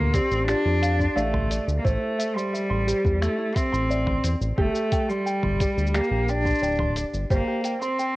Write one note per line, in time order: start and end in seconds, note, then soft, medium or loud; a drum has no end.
0.00 0.21 D2 medium
0.00 0.15 A#3 loud
0.00 0.13 C6 medium
0.13 0.46 C4 loud
0.13 0.34 G4 medium
0.13 0.47 D5 medium
0.13 kick loud
0.13 closed hi-hat medium
0.13 shaker medium
0.31 0.55 A1 medium
0.31 shaker soft
0.47 1.17 D4 loud
0.47 0.64 F4 medium
0.47 0.81 G4 loud
0.47 finger snap medium
0.47 shaker soft
0.65 1.08 F2 loud
0.65 0.81 F4 medium
0.82 0.98 F5 medium
0.82 closed hi-hat loud
0.82 shaker medium
0.99 1.15 C6 medium
0.99 kick medium
0.99 shaker soft
1.16 1.59 A1 loud
1.16 1.67 A3 loud
1.16 1.36 D5 loud
1.16 1.32 F5 medium
1.16 shaker soft
1.33 1.49 C6 medium
1.33 mid tom medium
1.50 1.83 D5 medium
1.50 closed hi-hat medium
1.50 shaker medium
1.68 1.80 D2 loud
1.68 shaker soft
1.79 1.86 A#3 medium
1.84 1.97 A1 medium
1.84 2.37 A3 medium
1.84 2.00 E4 loud
1.84 2.17 C5 medium
1.84 kick loud
1.84 shaker soft
2.02 2.17 E4 medium
2.19 2.34 E5 medium
2.19 closed hi-hat medium
2.19 shaker medium
2.36 3.23 G3 medium
2.36 2.51 C6 medium
2.36 shaker soft
2.53 2.68 E5 medium
2.53 shaker soft
2.70 2.94 A1 medium
2.70 2.85 C6 medium
2.87 3.07 G4 medium
2.87 3.20 C5 medium
2.87 closed hi-hat medium
2.87 shaker medium
3.05 3.28 E2 medium
3.05 kick loud
3.05 shaker soft
3.21 3.57 A3 medium
3.21 3.37 E4 loud
3.21 finger snap medium
3.21 shaker soft
3.38 3.54 E4 medium
3.55 4.23 C4 loud
3.55 3.71 E5 medium
3.55 kick loud
3.55 closed hi-hat medium
3.55 shaker medium
3.72 4.06 A1 medium
3.72 3.88 C6 medium
3.72 shaker soft
3.89 4.09 D5 loud
3.89 4.05 E5 medium
3.89 shaker soft
4.06 4.18 A1 medium
4.06 4.22 C6 medium
4.06 mid tom medium
4.23 4.36 E2 medium
4.23 4.56 C5 medium
4.23 closed hi-hat medium
4.23 shaker medium
4.41 4.52 A1 loud
4.41 shaker soft
4.57 4.70 G1 loud
4.57 5.10 A3 medium
4.57 4.73 G4 loud
4.57 4.77 G4 loud
4.57 kick loud
4.75 4.90 G4 medium
4.75 shaker soft
4.92 5.07 G5 medium
4.92 kick loud
4.92 closed hi-hat medium
4.92 shaker medium
5.09 5.97 G3 loud
5.09 5.24 C6 medium
5.09 shaker soft
5.26 5.41 G5 medium
5.26 shaker soft
5.43 5.67 G1 medium
5.43 5.58 C6 medium
5.43 mid tom medium
5.60 5.80 G4 medium
5.60 5.92 D5 medium
5.60 kick loud
5.60 closed hi-hat medium
5.60 shaker medium
5.77 6.01 D2 medium
5.77 shaker soft
5.86 shaker soft
5.94 6.31 A#3 medium
5.94 6.09 G4 loud
5.94 6.27 G4 loud
5.94 finger snap medium
5.94 shaker soft
6.03 shaker soft
6.11 6.54 A#1 loud
6.11 6.26 G4 medium
6.28 6.97 D4 loud
6.28 6.44 G5 medium
6.28 shaker medium
6.45 6.60 C6 medium
6.45 kick medium
6.45 shaker soft
6.50 shaker soft
6.54 shaker soft
6.58 7.05 D1 loud
6.58 6.78 G5 medium
6.58 shaker soft
6.63 6.82 D5 medium
6.63 shaker soft
6.71 shaker soft
6.75 mid tom medium
6.75 shaker soft
6.80 6.95 C6 medium
6.96 7.29 D5 medium
6.96 closed hi-hat medium
6.96 shaker medium
7.14 7.25 G1 loud
7.14 shaker soft
7.31 7.42 G1 loud
7.31 7.79 A#3 medium
7.31 7.46 G4 loud
7.31 7.63 C5 medium
7.31 kick loud
7.31 shaker soft
7.48 7.63 G4 medium
7.64 7.80 G5 medium
7.64 closed hi-hat medium
7.64 shaker medium
7.81 8.16 C4 loud
7.81 7.97 C6 medium
7.81 shaker soft
7.99 8.14 G5 medium
7.99 shaker soft